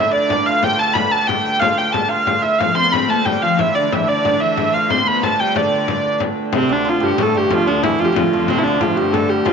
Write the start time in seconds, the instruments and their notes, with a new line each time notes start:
Already playing: hurdy-gurdy D3 A3 E5, hammered dulcimer A3 D4 A4 B4
0.01 hammered dulcimer E4
0.12 hurdy-gurdy D5, frame drum
0.17 hammered dulcimer D4
0.30 hammered dulcimer E4, frame drum
0.46 hammered dulcimer F4, hurdy-gurdy F5, frame drum
0.63 hammered dulcimer G4, hurdy-gurdy G5, frame drum
0.79 hammered dulcimer A4, hurdy-gurdy A5, frame drum
0.94 hammered dulcimer B4, hurdy-gurdy B5, frame drum
1.11 hammered dulcimer A4, hurdy-gurdy A5, frame drum
1.27 hammered dulcimer G4, hurdy-gurdy G5, frame drum
1.45 hammered dulcimer G4, frame drum
1.60 hammered dulcimer F4, hurdy-gurdy F5, frame drum
1.78 hammered dulcimer G4, hurdy-gurdy G5, frame drum
1.92 hammered dulcimer A4, hurdy-gurdy A5, frame drum
2.09 hammered dulcimer F4, hurdy-gurdy F5
2.27 hammered dulcimer F4, frame drum
2.42 hammered dulcimer E4, hurdy-gurdy E5, frame drum
2.59 hurdy-gurdy D3 A3 F5, viola da gamba F3, hammered dulcimer F4, frame drum
2.69 hammered dulcimer D5
2.75 viola da gamba C4, hammered dulcimer C5, hurdy-gurdy C6, frame drum
2.83 viola da gamba B3
2.90 viola da gamba C4, hurdy-gurdy B5
2.94 frame drum
3.08 viola da gamba A3, hammered dulcimer A4, hurdy-gurdy A5, frame drum
3.13 viola da gamba B3
3.18 viola da gamba A3
3.25 viola da gamba G3, hammered dulcimer G4, hurdy-gurdy G5, frame drum
3.42 viola da gamba F3, hammered dulcimer F4, hurdy-gurdy F5, frame drum
3.57 viola da gamba E3, hammered dulcimer E4, hurdy-gurdy E5, frame drum
3.63 viola da gamba F3
3.68 viola da gamba E3
3.73 viola da gamba D3, hammered dulcimer D4, hurdy-gurdy D5, frame drum
3.90 viola da gamba E3, hammered dulcimer E4, hurdy-gurdy E5, frame drum
3.95 viola da gamba F3
4.00 viola da gamba E3
4.07 viola da gamba D3, hammered dulcimer D4, hurdy-gurdy D5, frame drum
4.23 viola da gamba D3, hammered dulcimer D4, frame drum
4.40 viola da gamba E3, hammered dulcimer E4, hurdy-gurdy E5, frame drum
4.57 hammered dulcimer E4, frame drum
4.74 hammered dulcimer F4, hurdy-gurdy F5, frame drum
4.90 viola da gamba C4, hammered dulcimer C5, hurdy-gurdy C6, frame drum
5.06 viola da gamba B3, hammered dulcimer B4, hurdy-gurdy B5, frame drum
5.23 hammered dulcimer A4, hurdy-gurdy A5, frame drum
5.40 viola da gamba G3, hammered dulcimer G4, hurdy-gurdy G5, frame drum
5.56 viola da gamba D3, hammered dulcimer D4, hurdy-gurdy D5, frame drum
5.72 frame drum
5.88 frame drum
6.05 frame drum
6.20 frame drum
6.53 hammered dulcimer C3, viola da gamba C3, hurdy-gurdy D3 A3 C4, frame drum
6.69 viola da gamba D2, hammered dulcimer D3, hurdy-gurdy D4
6.85 hammered dulcimer F3, hurdy-gurdy F4
7.00 viola da gamba G2, hammered dulcimer G3, hurdy-gurdy G4, frame drum
7.18 viola da gamba A2, hammered dulcimer A3, hurdy-gurdy A4, frame drum
7.35 viola da gamba G2, hammered dulcimer G3, hurdy-gurdy G4
7.50 viola da gamba F2, hammered dulcimer F3, hurdy-gurdy F4, frame drum
7.66 viola da gamba D2, hammered dulcimer D3, hurdy-gurdy D4
7.83 viola da gamba E2, hammered dulcimer E3, hurdy-gurdy E4, frame drum
7.99 viola da gamba F2, hammered dulcimer F3, hurdy-gurdy F4, frame drum
8.05 hurdy-gurdy G4
8.12 viola da gamba F2, hammered dulcimer F3, hurdy-gurdy F4, frame drum
8.32 viola da gamba F2, hammered dulcimer F3, hurdy-gurdy F4
8.48 viola da gamba C3, hammered dulcimer C3, hurdy-gurdy C4, frame drum
8.58 hurdy-gurdy E4
8.63 viola da gamba D2, hurdy-gurdy D4
8.68 hammered dulcimer D3
8.80 viola da gamba F2, hammered dulcimer F3, hurdy-gurdy F4, frame drum
8.91 hammered dulcimer A3
8.96 viola da gamba G2, hammered dulcimer G3, hurdy-gurdy G4, frame drum
9.13 hurdy-gurdy A4, frame drum
9.29 hammered dulcimer G3, hurdy-gurdy G4
9.45 viola da gamba F2, hammered dulcimer F3, hurdy-gurdy F4, frame drum